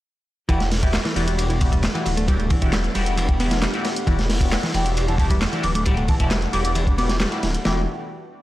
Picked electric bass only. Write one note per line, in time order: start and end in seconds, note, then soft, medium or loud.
0.49 0.58 E3 loud
1.05 1.14 E3 medium
1.17 1.25 E3 loud
1.50 1.55 E3 medium
1.72 1.81 G3 medium
1.95 2.16 E3 medium
2.17 2.27 A3 medium
2.28 2.37 G3 loud
2.39 2.49 A3 medium
2.50 2.71 E3 medium
2.73 2.82 G3 medium
2.95 3.04 G3 medium
3.17 3.26 E3 medium
3.40 3.61 B3 medium
3.63 3.71 G3 medium
4.07 4.16 E3 loud
4.63 4.72 E3 medium
4.74 4.83 E3 loud
5.08 5.13 E3 medium
5.31 5.39 G3 medium
5.53 5.74 E3 medium
5.75 5.85 A3 medium
5.86 5.95 G3 loud
5.97 6.07 A3 medium
6.09 6.30 E3 medium
6.31 6.40 G3 medium
6.53 6.62 G3 medium
6.75 6.84 E3 medium
6.98 7.19 B3 medium
7.20 7.29 G3 medium
7.65 7.86 E3 medium